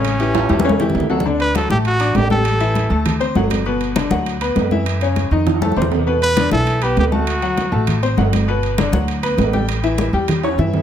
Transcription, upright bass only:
\new Staff \with { instrumentName = "Upright bass" } { \clef bass \time 4/4 \key d \major \tempo 4 = 199 a,,4. e,4. d,4~ | d,4. a,,4. a,,4~ | a,,4. d,4. g,,4~ | g,,4. d,4. fis,4~ |
fis,4. f,4. e,4~ | e,4. b,,4. d,4~ | d,4. a,,4. g,,4~ | g,,4. d,4. a,,4~ |
a,,4. e,4. g,4 | }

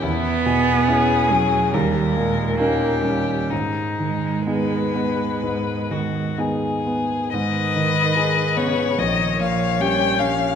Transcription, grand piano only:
\new Staff \with { instrumentName = "Grand piano" } { \time 4/4 \key gis \minor \tempo 4 = 70 e,8 b,8 <cis' e' gis'>8 cis'8 dis,8 ais,8 <cis' dis' ais'>8 cis'8 | gis,8 dis8 <b dis' gis'>8 b8 gis,8 dis8 <b dis' gis'>8 b8 | gis,8 dis8 <dis' gis'>8 b8 bes,,8 bes,8 <des' g'>8 des'8 | }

